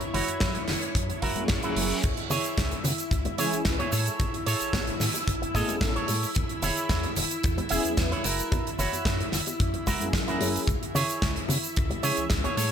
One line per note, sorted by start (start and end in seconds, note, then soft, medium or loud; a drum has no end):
0.00 2.02 E4 medium
0.00 2.04 C#5 medium
0.00 closed hi-hat medium
0.14 0.23 F#1 medium
0.14 0.62 E4 loud
0.14 0.62 F#4 medium
0.14 0.62 C#5 loud
0.14 open hi-hat loud
0.14 high conga medium
0.14 low conga medium
0.28 0.39 F#2 soft
0.28 closed hi-hat medium
0.40 0.58 F#2 medium
0.40 kick loud
0.40 snare loud
0.40 closed hi-hat medium
0.55 closed hi-hat medium
0.68 0.77 F#1 medium
0.68 snare medium
0.68 open hi-hat medium
0.68 low conga medium
0.82 closed hi-hat medium
0.95 1.12 F#2 medium
0.95 kick loud
0.95 closed hi-hat loud
0.95 reverse cymbal medium
1.09 muted clean electric guitar stroke medium
1.09 closed hi-hat medium
1.22 1.36 F#1 medium
1.22 1.43 E4 loud
1.22 1.43 F#4 medium
1.22 1.43 A#4 loud
1.22 kick medium
1.22 open hi-hat loud
1.36 1.47 F#2 soft
1.36 1.60 F#3 medium
1.36 1.60 A#3 medium
1.36 1.60 C#4 medium
1.36 1.60 E4 medium
1.36 1.60 G#4 medium
1.36 closed hi-hat medium
1.36 high conga medium
1.48 1.58 F#2 medium
1.48 kick loud
1.48 snare loud
1.48 closed hi-hat loud
1.63 2.01 F#3 loud
1.63 2.02 A#3 medium
1.63 2.02 C#4 medium
1.63 1.97 E4 medium
1.63 2.02 E4 medium
1.63 1.97 F#4 medium
1.63 2.02 G#4 loud
1.63 1.97 A#4 medium
1.63 closed hi-hat medium
1.76 1.93 F#1 loud
1.76 open hi-hat loud
1.76 high conga medium
1.90 open hi-hat medium
2.03 2.12 C#2 medium
2.03 10.67 E4 medium
2.03 10.67 E5 medium
2.03 kick loud
2.03 closed hi-hat loud
2.03 crash medium
2.03 shaker soft
2.17 closed hi-hat medium
2.30 2.39 C#3 medium
2.30 2.78 E4 loud
2.30 2.78 G#4 medium
2.30 2.78 C#5 loud
2.30 open hi-hat loud
2.30 high bongo soft
2.30 low conga medium
2.30 shaker medium
2.44 closed hi-hat medium
2.44 shaker medium
2.57 2.75 C#2 medium
2.57 kick loud
2.57 snare loud
2.57 closed hi-hat loud
2.57 shaker soft
2.71 closed hi-hat medium
2.84 2.93 C#3 medium
2.84 open hi-hat loud
2.84 high bongo medium
2.84 low conga loud
2.84 shaker medium
2.98 closed hi-hat medium
2.98 shaker medium
3.11 3.28 C#2 medium
3.11 kick loud
3.11 closed hi-hat medium
3.11 shaker soft
3.25 muted clean electric guitar stroke medium
3.25 closed hi-hat medium
3.25 high bongo medium
3.25 high conga medium
3.38 3.47 C#3 medium
3.38 3.62 E3 medium
3.38 3.62 G#3 medium
3.38 3.62 C#4 medium
3.38 3.62 E4 medium
3.38 3.59 E4 medium
3.38 3.59 G#4 medium
3.38 3.63 G#4 loud
3.38 3.59 C#5 loud
3.38 open hi-hat loud
3.38 shaker medium
3.53 3.63 C#2 soft
3.53 closed hi-hat medium
3.53 shaker medium
3.65 3.83 C#2 medium
3.65 3.76 E3 medium
3.65 3.76 G#3 medium
3.65 3.76 C#4 medium
3.65 3.76 E4 medium
3.65 3.77 B4 loud
3.65 kick loud
3.65 snare loud
3.65 closed hi-hat loud
3.65 shaker medium
3.79 3.92 E4 medium
3.79 3.91 G#4 medium
3.79 3.91 C#5 medium
3.79 closed hi-hat medium
3.79 high bongo medium
3.92 4.09 A2 loud
3.92 4.36 G#4 medium
3.92 4.36 A4 medium
3.92 4.36 C#5 medium
3.92 open hi-hat loud
3.92 high conga medium
3.92 shaker medium
4.06 closed hi-hat medium
4.06 shaker medium
4.19 4.28 A1 loud
4.19 kick loud
4.19 closed hi-hat medium
4.19 high bongo soft
4.19 shaker medium
4.34 closed hi-hat medium
4.46 4.55 A2 medium
4.46 4.94 G#4 medium
4.46 4.94 A4 medium
4.46 4.94 C#5 loud
4.46 open hi-hat loud
4.46 shaker medium
4.60 4.71 A1 soft
4.60 closed hi-hat medium
4.60 shaker medium
4.73 4.90 A1 medium
4.73 kick loud
4.73 snare loud
4.73 closed hi-hat medium
4.73 high bongo medium
4.73 shaker soft
4.87 closed hi-hat medium
5.00 5.09 A2 medium
5.00 snare medium
5.00 open hi-hat loud
5.00 low conga loud
5.00 shaker medium
5.14 closed hi-hat medium
5.14 high bongo medium
5.14 shaker medium
5.28 5.45 A1 loud
5.28 kick loud
5.28 closed hi-hat medium
5.28 shaker soft
5.42 muted clean electric guitar stroke medium
5.42 closed hi-hat medium
5.54 5.63 A2 medium
5.54 5.78 A3 medium
5.54 5.78 B3 medium
5.54 5.79 C#4 medium
5.54 5.79 E4 medium
5.54 5.79 G#4 loud
5.54 5.75 G#4 loud
5.54 5.75 A4 medium
5.54 5.75 D#5 loud
5.54 kick medium
5.54 open hi-hat loud
5.54 shaker medium
5.69 5.79 A1 soft
5.69 closed hi-hat medium
5.69 high bongo medium
5.69 high conga medium
5.69 shaker medium
5.81 5.98 A1 loud
5.81 5.92 A3 medium
5.81 5.92 B3 medium
5.81 5.93 C#4 medium
5.81 5.93 E4 medium
5.81 5.93 A4 loud
5.81 kick loud
5.81 snare loud
5.81 closed hi-hat medium
5.81 shaker soft
5.95 6.29 G#4 medium
5.95 6.29 A4 medium
5.95 6.29 C#5 loud
5.95 closed hi-hat medium
6.08 6.26 A2 loud
6.08 open hi-hat loud
6.08 high bongo soft
6.08 high conga medium
6.08 shaker medium
6.23 open hi-hat medium
6.23 shaker medium
6.35 6.45 E2 loud
6.35 kick loud
6.35 closed hi-hat medium
6.35 shaker soft
6.49 closed hi-hat medium
6.62 6.71 E1 medium
6.62 7.10 E4 loud
6.62 7.10 G#4 medium
6.62 7.10 C#5 loud
6.62 open hi-hat loud
6.62 high bongo medium
6.62 low conga medium
6.62 shaker medium
6.77 closed hi-hat medium
6.77 shaker medium
6.89 7.07 E2 medium
6.89 kick loud
6.89 snare loud
6.89 closed hi-hat medium
6.89 shaker soft
7.03 closed hi-hat medium
7.03 high bongo soft
7.16 7.25 E1 medium
7.16 open hi-hat loud
7.16 low conga loud
7.16 shaker medium
7.31 closed hi-hat medium
7.31 shaker medium
7.43 7.61 E2 loud
7.43 kick loud
7.43 closed hi-hat medium
7.43 shaker soft
7.57 muted clean electric guitar stroke medium
7.57 closed hi-hat medium
7.57 high bongo medium
7.57 high conga medium
7.69 7.79 E1 medium
7.69 7.94 F#3 medium
7.69 7.95 B3 medium
7.69 7.95 C#4 medium
7.69 7.95 E4 medium
7.69 7.91 E4 medium
7.69 7.91 G#4 medium
7.69 7.95 G#4 loud
7.69 7.91 E5 loud
7.69 open hi-hat loud
7.69 shaker medium
7.84 7.95 E2 soft
7.84 closed hi-hat medium
7.84 shaker medium
7.97 8.15 E2 medium
7.97 8.09 F#3 medium
7.97 8.09 B3 medium
7.97 8.09 C#4 medium
7.97 8.09 E4 medium
7.97 8.09 B4 loud
7.97 kick loud
7.97 snare loud
7.97 closed hi-hat loud
7.97 high bongo soft
7.97 shaker soft
8.12 8.23 E4 medium
8.12 8.25 G#4 medium
8.12 8.25 C#5 medium
8.12 closed hi-hat soft
8.24 8.42 F#1 loud
8.24 8.68 E4 medium
8.24 8.68 F#4 medium
8.24 8.69 A#4 medium
8.24 open hi-hat loud
8.24 high conga medium
8.24 shaker medium
8.39 closed hi-hat medium
8.39 shaker medium
8.52 8.61 F#2 medium
8.52 kick loud
8.52 closed hi-hat medium
8.52 high bongo medium
8.52 shaker medium
8.67 closed hi-hat medium
8.79 8.87 F#1 medium
8.79 9.26 E4 loud
8.79 9.26 F#4 medium
8.79 9.27 C#5 loud
8.79 open hi-hat loud
8.79 low conga medium
8.79 shaker medium
8.93 9.03 F#2 soft
8.93 closed hi-hat medium
8.93 high bongo soft
8.93 shaker medium
9.05 9.23 F#2 medium
9.05 kick loud
9.05 snare loud
9.05 closed hi-hat medium
9.05 shaker soft
9.20 closed hi-hat medium
9.32 9.42 F#1 medium
9.32 snare medium
9.32 open hi-hat loud
9.32 low conga medium
9.32 shaker medium
9.46 closed hi-hat medium
9.46 high bongo medium
9.46 shaker medium
9.60 9.77 F#2 medium
9.60 kick loud
9.60 closed hi-hat medium
9.60 shaker soft
9.74 muted clean electric guitar stroke medium
9.74 closed hi-hat medium
9.87 9.96 F#1 medium
9.87 10.07 E4 loud
9.87 10.07 F#4 medium
9.87 10.07 A#4 loud
9.87 kick medium
9.87 open hi-hat loud
9.87 high bongo soft
9.87 high conga medium
9.87 shaker medium
10.00 10.11 F#2 soft
10.00 10.24 F#3 medium
10.00 10.24 A#3 medium
10.00 10.25 C#4 medium
10.00 10.25 E4 medium
10.00 10.25 G#4 medium
10.00 closed hi-hat medium
10.00 high conga medium
10.00 shaker medium
10.13 10.31 F#2 medium
10.13 kick loud
10.13 snare loud
10.13 closed hi-hat medium
10.13 shaker medium
10.27 10.66 F#3 loud
10.27 10.66 A#3 medium
10.27 10.67 C#4 medium
10.27 10.62 E4 medium
10.27 10.67 E4 medium
10.27 10.62 F#4 medium
10.27 10.67 G#4 loud
10.27 10.62 A#4 medium
10.27 closed hi-hat medium
10.40 10.58 F#1 loud
10.40 open hi-hat loud
10.40 high bongo medium
10.40 high conga medium
10.40 shaker medium
10.56 open hi-hat medium
10.56 shaker medium
10.67 10.76 C#2 medium
10.67 12.72 E4 medium
10.67 12.72 E5 medium
10.67 kick loud
10.67 closed hi-hat medium
10.67 shaker medium
10.83 closed hi-hat medium
10.95 11.04 C#3 medium
10.95 11.43 E4 medium
10.95 11.43 G#4 medium
10.95 11.43 C#5 loud
10.95 open hi-hat loud
10.95 high bongo medium
10.95 low conga medium
10.95 shaker medium
11.09 closed hi-hat medium
11.09 shaker medium
11.22 11.39 C#2 medium
11.22 kick loud
11.22 snare loud
11.22 closed hi-hat medium
11.22 shaker soft
11.36 closed hi-hat soft
11.48 11.58 C#3 medium
11.48 open hi-hat loud
11.48 high bongo medium
11.48 low conga medium
11.48 shaker medium
11.64 closed hi-hat soft
11.64 shaker medium
11.76 11.94 C#2 loud
11.76 kick loud
11.76 closed hi-hat medium
11.76 shaker soft
11.90 muted clean electric guitar stroke medium
11.90 closed hi-hat medium
11.90 high bongo soft
11.90 high conga medium
12.03 12.12 C#3 medium
12.03 12.27 E3 medium
12.03 12.27 G#3 medium
12.03 12.27 C#4 medium
12.03 12.27 E4 medium
12.03 12.24 E4 medium
12.03 12.24 G#4 medium
12.03 12.27 G#4 loud
12.03 12.24 C#5 loud
12.03 open hi-hat loud
12.03 shaker medium
12.17 12.28 C#2 soft
12.17 closed hi-hat medium
12.17 shaker medium
12.30 12.47 C#2 medium
12.30 12.41 E3 medium
12.30 12.41 G#3 medium
12.30 12.41 C#4 medium
12.30 12.41 E4 medium
12.30 12.42 B4 medium
12.30 kick loud
12.30 snare loud
12.30 closed hi-hat loud
12.30 shaker medium
12.44 12.57 E4 medium
12.44 12.56 G#4 medium
12.44 12.56 C#5 medium
12.44 closed hi-hat medium
12.44 high bongo medium
12.57 12.72 A2 loud
12.57 12.72 G#4 medium
12.57 12.72 A4 medium
12.57 12.72 C#5 medium
12.57 open hi-hat loud
12.57 high conga medium
12.57 shaker medium